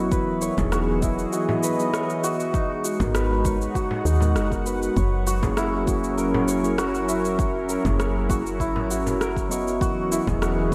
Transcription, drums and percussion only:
0.12 kick loud
0.12 shaker soft
0.42 shaker medium
0.58 kick medium
0.58 frame drum loud
0.58 shaker soft
0.72 cross-stick medium
0.72 shaker soft
1.02 kick loud
1.02 shaker medium
1.19 shaker soft
1.33 shaker soft
1.49 frame drum medium
1.63 shaker medium
1.79 shaker soft
1.94 cross-stick medium
1.94 shaker soft
2.10 shaker soft
2.24 shaker medium
2.40 shaker soft
2.54 kick loud
2.54 shaker soft
2.85 shaker medium
3.00 kick medium
3.00 frame drum medium
3.00 shaker soft
3.15 cross-stick loud
3.15 shaker soft
3.45 kick loud
3.45 shaker medium
3.62 shaker soft
3.75 kick medium
3.75 shaker soft
3.91 frame drum medium
4.06 shaker medium
4.20 frame drum medium
4.20 shaker soft
4.36 cross-stick medium
4.36 shaker soft
4.52 kick medium
4.52 shaker soft
4.66 shaker medium
4.83 shaker soft
4.97 kick loud
4.97 shaker soft
5.27 shaker medium
5.43 kick medium
5.43 frame drum medium
5.43 shaker soft
5.57 cross-stick medium
5.57 shaker soft
5.87 kick loud
5.87 shaker medium
6.04 shaker soft
6.18 shaker soft
6.34 frame drum medium
6.48 shaker medium
6.64 shaker soft
6.78 cross-stick medium
6.78 shaker soft
6.95 shaker soft
7.09 shaker medium
7.25 shaker soft
7.39 kick loud
7.39 shaker soft
7.69 shaker medium
7.85 kick medium
7.85 frame drum medium
7.85 shaker soft
8.00 cross-stick medium
8.00 shaker soft
8.30 kick loud
8.30 shaker medium
8.46 shaker soft
8.60 kick medium
8.60 shaker soft
8.76 frame drum medium
8.91 shaker medium
9.07 frame drum medium
9.07 shaker soft
9.21 cross-stick medium
9.21 shaker soft
9.37 kick medium
9.37 shaker soft
9.52 shaker medium
9.68 shaker soft
9.81 kick loud
9.81 shaker soft
10.12 shaker medium
10.27 kick medium
10.27 frame drum medium
10.27 shaker soft
10.42 cross-stick loud
10.42 shaker soft

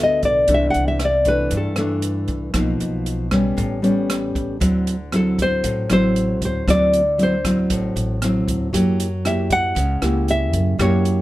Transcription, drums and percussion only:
0.23 kick medium
0.23 closed hi-hat soft
0.48 kick medium
0.48 closed hi-hat medium
0.74 closed hi-hat soft
1.00 cross-stick medium
1.00 closed hi-hat soft
1.25 kick medium
1.25 closed hi-hat soft
1.51 kick medium
1.51 closed hi-hat soft
1.76 cross-stick medium
1.76 closed hi-hat soft
2.02 closed hi-hat soft
2.28 kick medium
2.28 closed hi-hat soft
2.54 kick medium
2.54 cross-stick medium
2.54 closed hi-hat soft
2.80 closed hi-hat soft
3.06 closed hi-hat soft
3.31 kick medium
3.31 cross-stick medium
3.31 closed hi-hat soft
3.58 kick medium
3.58 closed hi-hat soft
3.84 closed hi-hat soft
4.10 cross-stick medium
4.10 closed hi-hat medium
4.35 kick medium
4.35 closed hi-hat soft
4.61 kick medium
4.61 closed hi-hat medium
4.87 closed hi-hat soft
5.12 cross-stick medium
5.12 closed hi-hat soft
5.38 kick medium
5.38 closed hi-hat soft
5.64 kick medium
5.64 closed hi-hat medium
5.90 cross-stick medium
5.90 closed hi-hat soft
6.16 closed hi-hat soft
6.42 kick medium
6.42 closed hi-hat soft
6.68 kick medium
6.68 cross-stick medium
6.68 closed hi-hat medium
6.93 closed hi-hat soft
7.19 closed hi-hat soft
7.45 kick medium
7.45 cross-stick medium
7.45 closed hi-hat soft
7.70 kick medium
7.70 closed hi-hat medium
7.97 closed hi-hat soft
8.22 cross-stick medium
8.22 closed hi-hat soft
8.48 kick medium
8.48 closed hi-hat soft
8.74 kick medium
8.74 closed hi-hat medium
9.00 closed hi-hat soft
9.25 cross-stick medium
9.25 closed hi-hat soft
9.50 kick medium
9.50 closed hi-hat soft
9.76 kick medium
9.76 closed hi-hat medium
10.02 cross-stick medium
10.02 closed hi-hat soft
10.28 closed hi-hat soft
10.53 kick medium
10.53 closed hi-hat soft
10.79 kick medium
10.79 cross-stick medium
10.79 closed hi-hat medium
11.05 closed hi-hat soft

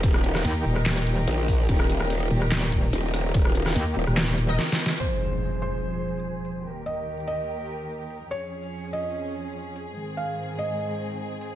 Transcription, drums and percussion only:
0.03 kick loud
0.03 closed hi-hat medium
0.03 ride medium
0.14 cross-stick medium
0.24 closed hi-hat medium
0.35 cross-stick medium
0.35 snare soft
0.45 closed hi-hat medium
0.45 ride soft
0.76 cross-stick medium
0.86 snare loud
0.86 clap medium
0.86 closed hi-hat medium
0.86 ride medium
1.07 closed hi-hat medium
1.27 closed hi-hat medium
1.27 ride soft
1.48 kick medium
1.48 open hi-hat loud
1.69 kick loud
1.69 closed hi-hat medium
1.69 ride medium
1.80 cross-stick medium
1.90 closed hi-hat medium
2.00 cross-stick medium
2.10 closed hi-hat medium
2.10 ride soft
2.42 cross-stick medium
2.52 snare loud
2.52 clap medium
2.52 closed hi-hat medium
2.52 ride medium
2.72 kick medium
2.72 closed hi-hat medium
2.93 closed hi-hat medium
2.93 ride soft
3.14 cross-stick medium
3.14 open hi-hat loud
3.34 kick loud
3.34 closed hi-hat medium
3.34 ride medium
3.45 cross-stick medium
3.55 closed hi-hat medium
3.66 cross-stick medium
3.66 snare soft
3.76 closed hi-hat medium
3.76 ride soft
4.07 cross-stick medium
4.17 snare loud
4.17 clap medium
4.17 closed hi-hat medium
4.17 ride medium
4.38 closed hi-hat medium
4.59 snare medium
4.59 closed hi-hat medium
4.59 ride soft
4.72 snare medium
4.79 open hi-hat loud
4.86 snare loud
4.86 closed hi-hat soft
6.45 open hi-hat medium
8.10 open hi-hat medium
9.76 open hi-hat medium
11.41 open hi-hat medium

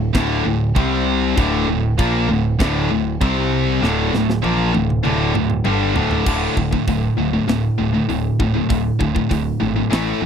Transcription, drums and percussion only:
0.15 kick loud
0.15 snare loud
0.15 crash medium
0.76 kick loud
0.76 crash medium
1.38 kick loud
1.38 crash medium
1.99 kick loud
1.99 crash medium
2.60 kick loud
2.60 snare loud
2.60 crash medium
3.21 kick loud
3.21 crash medium
3.84 snare medium
4.14 snare medium
4.30 snare medium
4.44 high tom medium
4.75 high tom medium
4.90 mid tom medium
5.05 mid tom medium
5.35 mid tom medium
5.50 mid tom medium
5.65 mid tom loud
5.96 floor tom loud
6.11 floor tom medium
6.26 kick loud
6.26 crash loud
6.57 kick medium
6.73 kick medium
6.88 kick medium
6.88 open hi-hat medium
7.49 snare loud
7.49 open hi-hat medium
8.10 open hi-hat medium
8.40 kick medium
8.70 kick loud
8.70 open hi-hat medium
9.01 kick medium
9.16 kick medium
9.31 kick medium
9.31 open hi-hat medium
9.92 snare loud
9.92 open hi-hat medium

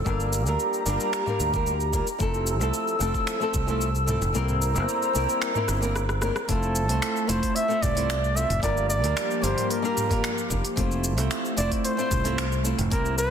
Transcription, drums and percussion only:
0.06 kick loud
0.06 shaker soft
0.20 shaker soft
0.33 shaker medium
0.46 shaker soft
0.59 shaker soft
0.73 shaker soft
0.86 shaker medium
1.00 shaker soft
1.13 finger snap medium
1.13 shaker soft
1.27 mid tom medium
1.27 shaker soft
1.40 shaker medium
1.54 kick medium
1.54 shaker soft
1.67 shaker soft
1.80 shaker soft
1.93 kick medium
1.93 shaker medium
2.07 shaker soft
2.20 kick loud
2.20 shaker soft
2.34 shaker soft
2.47 shaker medium
2.61 shaker soft
2.74 shaker soft
2.88 shaker soft
3.01 shaker medium
3.14 kick medium
3.14 shaker soft
3.27 finger snap medium
3.27 shaker soft
3.41 shaker soft
3.54 kick loud
3.54 shaker medium
3.68 shaker soft
3.81 shaker soft
3.95 shaker soft
4.08 mid tom medium
4.08 shaker medium
4.22 shaker soft
4.35 shaker soft
4.48 mid tom medium
4.48 shaker soft
4.62 shaker medium
4.76 shaker soft
4.89 shaker soft
5.02 shaker soft
5.15 shaker medium
5.29 shaker soft
5.42 finger snap medium
5.42 shaker soft
5.55 mid tom medium
5.55 shaker soft
5.68 cross-stick medium
5.68 shaker medium
5.82 shaker soft
5.96 cross-stick medium
5.96 shaker soft
6.09 cross-stick medium
6.09 shaker soft
6.22 cross-stick medium
6.22 shaker medium
6.36 cross-stick medium
6.36 shaker soft
6.49 kick loud
6.49 open hi-hat medium
6.49 shaker soft
6.63 shaker soft
6.75 shaker medium
6.89 open hi-hat soft
6.89 shaker soft
7.02 finger snap loud
7.02 open hi-hat medium
7.02 shaker soft
7.16 shaker soft
7.29 open hi-hat medium
7.29 shaker medium
7.43 kick medium
7.43 open hi-hat soft
7.43 shaker soft
7.56 open hi-hat medium
7.56 shaker soft
7.70 shaker soft
7.83 kick loud
7.83 mid tom medium
7.83 open hi-hat soft
7.83 shaker medium
7.97 open hi-hat soft
7.97 shaker soft
8.10 finger snap loud
8.10 open hi-hat medium
8.10 shaker soft
8.24 shaker soft
8.37 shaker medium
8.50 mid tom medium
8.50 open hi-hat soft
8.50 shaker soft
8.63 kick loud
8.63 open hi-hat medium
8.63 shaker soft
8.77 shaker soft
8.90 shaker medium
9.04 open hi-hat soft
9.04 shaker soft
9.17 finger snap loud
9.17 open hi-hat medium
9.17 shaker soft
9.31 shaker soft
9.44 open hi-hat soft
9.44 shaker medium
9.58 mid tom medium
9.58 open hi-hat soft
9.58 shaker soft
9.71 open hi-hat medium
9.71 shaker soft
9.85 shaker soft
9.97 mid tom medium
9.97 open hi-hat soft
9.97 shaker medium
10.11 kick loud
10.11 mid tom medium
10.11 open hi-hat soft
10.11 shaker soft
10.24 finger snap loud
10.24 open hi-hat medium
10.24 shaker soft
10.38 shaker soft
10.50 kick medium
10.50 shaker medium
10.65 open hi-hat soft
10.65 shaker soft
10.77 kick loud
10.77 open hi-hat medium
10.77 shaker soft
10.91 shaker soft
11.04 shaker medium
11.18 open hi-hat soft
11.18 shaker soft
11.31 finger snap loud
11.31 open hi-hat medium
11.31 shaker soft
11.45 shaker soft
11.58 open hi-hat medium
11.58 shaker medium
11.72 kick medium
11.72 open hi-hat soft
11.72 shaker soft
11.85 open hi-hat medium
11.85 shaker soft
11.99 shaker soft
12.11 kick loud
12.11 mid tom medium
12.11 open hi-hat soft
12.11 shaker medium
12.25 open hi-hat soft
12.25 shaker soft
12.38 finger snap loud
12.38 open hi-hat medium
12.38 shaker soft
12.52 shaker soft
12.65 shaker medium
12.79 mid tom medium
12.79 open hi-hat soft
12.79 shaker soft
12.91 kick loud
12.91 open hi-hat medium
12.91 shaker soft
13.05 shaker soft
13.18 shaker medium

